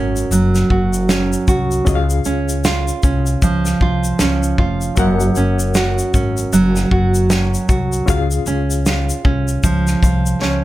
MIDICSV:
0, 0, Header, 1, 5, 480
1, 0, Start_track
1, 0, Key_signature, -5, "major"
1, 0, Tempo, 776197
1, 1156, Time_signature, 4, 2, 24, 8
1, 6580, End_track
2, 0, Start_track
2, 0, Title_t, "Reed electric piano"
2, 0, Program_c, 0, 4
2, 0, Control_c, 0, 64, 127
2, 0, Note_on_c, 0, 61, 83
2, 0, Note_on_c, 0, 66, 69
2, 0, Note_on_c, 0, 70, 71
2, 0, Note_on_c, 0, 78, 87
2, 0, Note_on_c, 0, 82, 57
2, 0, Note_on_c, 0, 85, 69
2, 1129, Note_off_c, 0, 61, 0
2, 1133, Note_off_c, 0, 66, 0
2, 1138, Note_off_c, 0, 70, 0
2, 1144, Note_on_c, 0, 61, 82
2, 1153, Note_on_c, 0, 65, 74
2, 1159, Note_on_c, 0, 68, 66
2, 1161, Note_off_c, 0, 78, 0
2, 1165, Control_c, 0, 64, 0
2, 1166, Note_off_c, 0, 82, 0
2, 1168, Note_on_c, 0, 75, 71
2, 1171, Note_off_c, 0, 85, 0
2, 1208, Note_on_c, 0, 77, 87
2, 1210, Note_off_c, 0, 75, 0
2, 1288, Control_c, 0, 64, 127
2, 3045, Note_off_c, 0, 61, 0
2, 3050, Note_off_c, 0, 65, 0
2, 3053, Note_off_c, 0, 68, 0
2, 3064, Note_on_c, 0, 61, 73
2, 3071, Note_on_c, 0, 66, 71
2, 3077, Note_off_c, 0, 77, 0
2, 3080, Note_on_c, 0, 70, 74
2, 3084, Control_c, 0, 64, 0
2, 3088, Note_on_c, 0, 78, 96
2, 3190, Control_c, 0, 64, 127
2, 4966, Note_off_c, 0, 61, 0
2, 4970, Note_off_c, 0, 66, 0
2, 4974, Note_off_c, 0, 70, 0
2, 4978, Note_off_c, 0, 78, 0
2, 4984, Note_on_c, 0, 61, 74
2, 4992, Note_on_c, 0, 65, 77
2, 5002, Note_on_c, 0, 68, 74
2, 5006, Control_c, 0, 64, 0
2, 5009, Note_on_c, 0, 77, 90
2, 5118, Control_c, 0, 64, 127
2, 6441, Note_on_c, 0, 73, 72
2, 6580, Note_off_c, 0, 61, 0
2, 6580, Note_off_c, 0, 65, 0
2, 6580, Note_off_c, 0, 68, 0
2, 6580, Note_off_c, 0, 73, 0
2, 6580, Note_off_c, 0, 77, 0
2, 6580, End_track
3, 0, Start_track
3, 0, Title_t, "Nylon-string guitar"
3, 0, Program_c, 1, 24
3, 0, Note_on_c, 1, 42, 87
3, 0, Note_on_c, 1, 61, 62
3, 0, Note_on_c, 1, 66, 68
3, 198, Note_on_c, 1, 54, 70
3, 430, Note_off_c, 1, 66, 0
3, 438, Note_on_c, 1, 66, 69
3, 675, Note_off_c, 1, 61, 0
3, 678, Note_on_c, 1, 61, 63
3, 910, Note_off_c, 1, 66, 0
3, 918, Note_on_c, 1, 66, 73
3, 1157, Note_off_c, 1, 42, 0
3, 1215, Note_off_c, 1, 54, 0
3, 1215, Note_off_c, 1, 66, 0
3, 1393, Note_off_c, 1, 61, 0
3, 1395, Note_on_c, 1, 61, 66
3, 1637, Note_on_c, 1, 65, 77
3, 1877, Note_off_c, 1, 61, 0
3, 1879, Note_on_c, 1, 61, 64
3, 2122, Note_on_c, 1, 53, 79
3, 2357, Note_off_c, 1, 65, 0
3, 2363, Note_on_c, 1, 65, 76
3, 2600, Note_off_c, 1, 61, 0
3, 2603, Note_on_c, 1, 61, 64
3, 2830, Note_off_c, 1, 65, 0
3, 2838, Note_on_c, 1, 65, 68
3, 3084, Note_on_c, 1, 42, 81
3, 3135, Note_off_c, 1, 65, 0
3, 3137, Note_off_c, 1, 53, 0
3, 3318, Note_off_c, 1, 61, 0
3, 3321, Note_on_c, 1, 61, 74
3, 3556, Note_on_c, 1, 66, 76
3, 3797, Note_off_c, 1, 61, 0
3, 3799, Note_on_c, 1, 61, 65
3, 4037, Note_on_c, 1, 54, 78
3, 4269, Note_off_c, 1, 66, 0
3, 4276, Note_on_c, 1, 66, 75
3, 4512, Note_off_c, 1, 61, 0
3, 4514, Note_on_c, 1, 61, 62
3, 4748, Note_off_c, 1, 66, 0
3, 4755, Note_on_c, 1, 66, 72
3, 5001, Note_off_c, 1, 42, 0
3, 5054, Note_off_c, 1, 66, 0
3, 5055, Note_off_c, 1, 54, 0
3, 5237, Note_off_c, 1, 61, 0
3, 5240, Note_on_c, 1, 61, 64
3, 5479, Note_on_c, 1, 65, 71
3, 5715, Note_off_c, 1, 61, 0
3, 5717, Note_on_c, 1, 61, 65
3, 5961, Note_on_c, 1, 53, 74
3, 6196, Note_off_c, 1, 65, 0
3, 6204, Note_on_c, 1, 65, 71
3, 6441, Note_off_c, 1, 61, 0
3, 6443, Note_on_c, 1, 61, 62
3, 6580, Note_off_c, 1, 53, 0
3, 6580, Note_off_c, 1, 61, 0
3, 6580, Note_off_c, 1, 65, 0
3, 6580, End_track
4, 0, Start_track
4, 0, Title_t, "Upright bass"
4, 0, Program_c, 2, 32
4, 0, Note_on_c, 2, 32, 86
4, 153, Note_off_c, 2, 32, 0
4, 191, Note_on_c, 2, 30, 99
4, 390, Note_off_c, 2, 30, 0
4, 432, Note_on_c, 2, 30, 98
4, 828, Note_off_c, 2, 30, 0
4, 914, Note_on_c, 2, 36, 93
4, 1112, Note_off_c, 2, 36, 0
4, 1153, Note_on_c, 2, 37, 118
4, 1351, Note_off_c, 2, 37, 0
4, 1397, Note_on_c, 2, 37, 97
4, 1791, Note_off_c, 2, 37, 0
4, 1874, Note_on_c, 2, 36, 108
4, 2072, Note_off_c, 2, 36, 0
4, 2116, Note_on_c, 2, 37, 98
4, 2313, Note_off_c, 2, 37, 0
4, 2355, Note_on_c, 2, 36, 93
4, 2553, Note_off_c, 2, 36, 0
4, 2597, Note_on_c, 2, 37, 101
4, 2794, Note_off_c, 2, 37, 0
4, 2833, Note_on_c, 2, 29, 98
4, 3031, Note_off_c, 2, 29, 0
4, 3073, Note_on_c, 2, 30, 115
4, 3271, Note_off_c, 2, 30, 0
4, 3316, Note_on_c, 2, 30, 91
4, 3710, Note_off_c, 2, 30, 0
4, 3796, Note_on_c, 2, 32, 96
4, 3993, Note_off_c, 2, 32, 0
4, 4035, Note_on_c, 2, 30, 107
4, 4233, Note_off_c, 2, 30, 0
4, 4275, Note_on_c, 2, 30, 104
4, 4669, Note_off_c, 2, 30, 0
4, 4755, Note_on_c, 2, 36, 92
4, 4953, Note_off_c, 2, 36, 0
4, 4994, Note_on_c, 2, 37, 111
4, 5193, Note_off_c, 2, 37, 0
4, 5232, Note_on_c, 2, 37, 99
4, 5628, Note_off_c, 2, 37, 0
4, 5718, Note_on_c, 2, 36, 101
4, 5915, Note_off_c, 2, 36, 0
4, 5958, Note_on_c, 2, 37, 93
4, 6156, Note_off_c, 2, 37, 0
4, 6198, Note_on_c, 2, 36, 92
4, 6396, Note_off_c, 2, 36, 0
4, 6440, Note_on_c, 2, 37, 93
4, 6580, Note_off_c, 2, 37, 0
4, 6580, End_track
5, 0, Start_track
5, 0, Title_t, "Drums"
5, 100, Note_on_c, 9, 82, 53
5, 162, Note_off_c, 9, 82, 0
5, 198, Note_on_c, 9, 82, 92
5, 260, Note_off_c, 9, 82, 0
5, 339, Note_on_c, 9, 38, 36
5, 341, Note_on_c, 9, 82, 53
5, 401, Note_off_c, 9, 38, 0
5, 402, Note_off_c, 9, 82, 0
5, 435, Note_on_c, 9, 36, 81
5, 497, Note_off_c, 9, 36, 0
5, 578, Note_on_c, 9, 82, 58
5, 640, Note_off_c, 9, 82, 0
5, 674, Note_on_c, 9, 38, 119
5, 678, Note_on_c, 9, 82, 74
5, 736, Note_off_c, 9, 38, 0
5, 739, Note_off_c, 9, 82, 0
5, 822, Note_on_c, 9, 82, 55
5, 884, Note_off_c, 9, 82, 0
5, 914, Note_on_c, 9, 36, 107
5, 916, Note_on_c, 9, 82, 55
5, 976, Note_off_c, 9, 36, 0
5, 978, Note_off_c, 9, 82, 0
5, 1059, Note_on_c, 9, 82, 45
5, 1121, Note_off_c, 9, 82, 0
5, 1156, Note_on_c, 9, 36, 113
5, 1156, Note_on_c, 9, 82, 69
5, 1218, Note_off_c, 9, 36, 0
5, 1218, Note_off_c, 9, 82, 0
5, 1299, Note_on_c, 9, 82, 59
5, 1361, Note_off_c, 9, 82, 0
5, 1390, Note_on_c, 9, 82, 56
5, 1452, Note_off_c, 9, 82, 0
5, 1540, Note_on_c, 9, 82, 60
5, 1601, Note_off_c, 9, 82, 0
5, 1636, Note_on_c, 9, 82, 81
5, 1638, Note_on_c, 9, 38, 112
5, 1698, Note_off_c, 9, 82, 0
5, 1700, Note_off_c, 9, 38, 0
5, 1781, Note_on_c, 9, 82, 56
5, 1843, Note_off_c, 9, 82, 0
5, 1874, Note_on_c, 9, 82, 54
5, 1876, Note_on_c, 9, 36, 96
5, 1936, Note_off_c, 9, 82, 0
5, 1938, Note_off_c, 9, 36, 0
5, 2019, Note_on_c, 9, 82, 53
5, 2080, Note_off_c, 9, 82, 0
5, 2116, Note_on_c, 9, 36, 102
5, 2117, Note_on_c, 9, 82, 90
5, 2178, Note_off_c, 9, 36, 0
5, 2179, Note_off_c, 9, 82, 0
5, 2260, Note_on_c, 9, 38, 41
5, 2261, Note_on_c, 9, 82, 52
5, 2322, Note_off_c, 9, 38, 0
5, 2323, Note_off_c, 9, 82, 0
5, 2356, Note_on_c, 9, 36, 85
5, 2417, Note_off_c, 9, 36, 0
5, 2499, Note_on_c, 9, 82, 56
5, 2561, Note_off_c, 9, 82, 0
5, 2592, Note_on_c, 9, 38, 126
5, 2595, Note_on_c, 9, 82, 74
5, 2654, Note_off_c, 9, 38, 0
5, 2657, Note_off_c, 9, 82, 0
5, 2741, Note_on_c, 9, 82, 52
5, 2803, Note_off_c, 9, 82, 0
5, 2834, Note_on_c, 9, 36, 95
5, 2896, Note_off_c, 9, 36, 0
5, 2976, Note_on_c, 9, 82, 46
5, 3038, Note_off_c, 9, 82, 0
5, 3073, Note_on_c, 9, 82, 69
5, 3076, Note_on_c, 9, 36, 113
5, 3134, Note_off_c, 9, 82, 0
5, 3138, Note_off_c, 9, 36, 0
5, 3218, Note_on_c, 9, 82, 57
5, 3280, Note_off_c, 9, 82, 0
5, 3312, Note_on_c, 9, 82, 59
5, 3373, Note_off_c, 9, 82, 0
5, 3460, Note_on_c, 9, 82, 63
5, 3522, Note_off_c, 9, 82, 0
5, 3554, Note_on_c, 9, 82, 77
5, 3556, Note_on_c, 9, 38, 124
5, 3616, Note_off_c, 9, 82, 0
5, 3618, Note_off_c, 9, 38, 0
5, 3701, Note_on_c, 9, 82, 59
5, 3763, Note_off_c, 9, 82, 0
5, 3797, Note_on_c, 9, 36, 98
5, 3799, Note_on_c, 9, 82, 56
5, 3859, Note_off_c, 9, 36, 0
5, 3860, Note_off_c, 9, 82, 0
5, 3941, Note_on_c, 9, 82, 55
5, 4002, Note_off_c, 9, 82, 0
5, 4039, Note_on_c, 9, 82, 93
5, 4101, Note_off_c, 9, 82, 0
5, 4179, Note_on_c, 9, 38, 37
5, 4181, Note_on_c, 9, 82, 54
5, 4241, Note_off_c, 9, 38, 0
5, 4243, Note_off_c, 9, 82, 0
5, 4276, Note_on_c, 9, 36, 95
5, 4337, Note_off_c, 9, 36, 0
5, 4420, Note_on_c, 9, 82, 58
5, 4482, Note_off_c, 9, 82, 0
5, 4515, Note_on_c, 9, 38, 127
5, 4518, Note_on_c, 9, 82, 79
5, 4577, Note_off_c, 9, 38, 0
5, 4580, Note_off_c, 9, 82, 0
5, 4664, Note_on_c, 9, 82, 55
5, 4726, Note_off_c, 9, 82, 0
5, 4756, Note_on_c, 9, 36, 107
5, 4757, Note_on_c, 9, 82, 51
5, 4818, Note_off_c, 9, 36, 0
5, 4819, Note_off_c, 9, 82, 0
5, 4901, Note_on_c, 9, 82, 42
5, 4962, Note_off_c, 9, 82, 0
5, 4998, Note_on_c, 9, 36, 114
5, 4998, Note_on_c, 9, 82, 69
5, 5060, Note_off_c, 9, 36, 0
5, 5060, Note_off_c, 9, 82, 0
5, 5140, Note_on_c, 9, 82, 61
5, 5201, Note_off_c, 9, 82, 0
5, 5234, Note_on_c, 9, 82, 56
5, 5296, Note_off_c, 9, 82, 0
5, 5384, Note_on_c, 9, 82, 60
5, 5446, Note_off_c, 9, 82, 0
5, 5480, Note_on_c, 9, 82, 78
5, 5482, Note_on_c, 9, 38, 117
5, 5542, Note_off_c, 9, 82, 0
5, 5544, Note_off_c, 9, 38, 0
5, 5625, Note_on_c, 9, 82, 62
5, 5687, Note_off_c, 9, 82, 0
5, 5719, Note_on_c, 9, 36, 102
5, 5781, Note_off_c, 9, 36, 0
5, 5863, Note_on_c, 9, 82, 48
5, 5924, Note_off_c, 9, 82, 0
5, 5959, Note_on_c, 9, 36, 107
5, 5960, Note_on_c, 9, 82, 85
5, 6021, Note_off_c, 9, 36, 0
5, 6022, Note_off_c, 9, 82, 0
5, 6104, Note_on_c, 9, 38, 37
5, 6106, Note_on_c, 9, 82, 51
5, 6166, Note_off_c, 9, 38, 0
5, 6168, Note_off_c, 9, 82, 0
5, 6200, Note_on_c, 9, 36, 89
5, 6205, Note_on_c, 9, 82, 62
5, 6262, Note_off_c, 9, 36, 0
5, 6266, Note_off_c, 9, 82, 0
5, 6347, Note_on_c, 9, 82, 60
5, 6409, Note_off_c, 9, 82, 0
5, 6443, Note_on_c, 9, 38, 64
5, 6505, Note_off_c, 9, 38, 0
5, 6580, End_track
0, 0, End_of_file